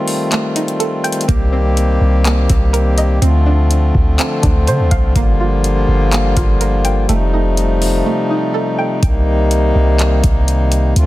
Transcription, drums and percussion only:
0.08 open hi-hat
0.32 clap, closed hi-hat
0.56 closed hi-hat
0.68 closed hi-hat
0.80 closed hi-hat
1.04 closed hi-hat
1.12 closed hi-hat
1.21 closed hi-hat
1.29 kick, closed hi-hat
1.77 closed hi-hat
2.25 clap, closed hi-hat
2.50 kick, closed hi-hat
2.74 closed hi-hat
2.98 closed hi-hat
3.22 closed hi-hat
3.71 closed hi-hat
3.95 kick
4.19 clap, closed hi-hat
4.43 kick, closed hi-hat
4.67 closed hi-hat
4.91 kick, closed hi-hat
5.16 kick, closed hi-hat
5.64 closed hi-hat
6.12 clap, closed hi-hat
6.37 kick, closed hi-hat
6.61 closed hi-hat
6.85 closed hi-hat
7.09 closed hi-hat
7.57 closed hi-hat
7.82 open hi-hat
9.03 kick, closed hi-hat
9.51 closed hi-hat
9.99 clap, closed hi-hat
10.24 kick, closed hi-hat
10.48 closed hi-hat
10.72 closed hi-hat
10.96 closed hi-hat

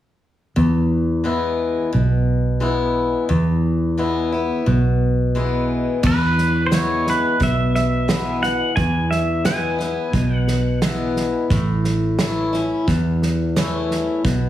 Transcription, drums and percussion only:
6.04 kick, snare, crash
6.38 snare
6.72 snare, hi-hat pedal
7.07 snare
7.41 kick, snare
7.75 snare
8.09 snare, hi-hat pedal
8.43 snare
8.77 kick, snare
9.11 snare
9.45 snare, hi-hat pedal
9.79 snare
10.13 kick, snare
10.48 snare
10.82 snare, hi-hat pedal
11.16 snare
11.50 kick, snare
11.84 snare
12.19 snare, hi-hat pedal
12.54 snare
12.88 kick, snare
13.22 snare
13.56 snare, hi-hat pedal
13.91 snare
14.25 kick, snare

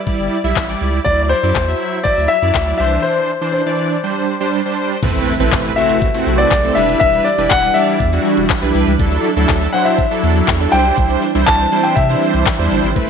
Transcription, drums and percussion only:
0.07 kick
0.56 kick, snare, clap
1.06 kick
1.56 kick, snare, clap
2.05 kick
2.55 kick, snare, clap
5.03 kick, crash, shaker
5.15 closed hi-hat, shaker
5.27 open hi-hat, shaker
5.40 closed hi-hat, shaker
5.52 kick, snare, clap, shaker
5.65 closed hi-hat, shaker
5.77 open hi-hat, shaker
5.89 closed hi-hat, shaker
6.02 kick, shaker
6.14 closed hi-hat, shaker
6.27 open hi-hat, shaker
6.39 closed hi-hat, shaker
6.51 kick, snare, clap, shaker
6.64 closed hi-hat, shaker
6.76 open hi-hat, shaker
6.89 closed hi-hat, shaker
7.01 kick, shaker
7.13 closed hi-hat, shaker
7.26 open hi-hat, shaker
7.38 closed hi-hat, shaker
7.51 kick, snare, clap, shaker
7.63 closed hi-hat, shaker
7.75 open hi-hat, shaker
7.88 closed hi-hat, shaker
8.00 kick, shaker
8.13 closed hi-hat, shaker
8.25 open hi-hat, shaker
8.37 closed hi-hat, shaker
8.50 kick, snare, clap, shaker
8.62 closed hi-hat, shaker
8.75 open hi-hat, shaker
8.87 closed hi-hat, shaker
8.99 kick, shaker
9.12 closed hi-hat, shaker
9.24 open hi-hat, shaker
9.37 closed hi-hat, shaker
9.49 kick, snare, clap, shaker
9.61 closed hi-hat, shaker
9.74 open hi-hat, shaker
9.86 closed hi-hat, shaker
9.98 kick, shaker
10.11 closed hi-hat, shaker
10.23 open hi-hat, shaker
10.36 closed hi-hat, shaker
10.48 kick, snare, clap, shaker
10.60 closed hi-hat, shaker
10.73 open hi-hat, shaker
10.85 closed hi-hat, shaker
10.98 kick, shaker
11.10 closed hi-hat, shaker
11.23 open hi-hat, shaker
11.35 closed hi-hat, shaker
11.47 kick, snare, clap, shaker
11.60 closed hi-hat, shaker
11.72 open hi-hat, shaker
11.84 closed hi-hat, shaker
11.97 kick, shaker
12.09 closed hi-hat, shaker
12.22 open hi-hat, shaker
12.34 closed hi-hat, shaker
12.46 kick, snare, clap, shaker
12.59 closed hi-hat, shaker
12.71 open hi-hat, shaker
12.84 closed hi-hat, shaker
12.96 kick, shaker

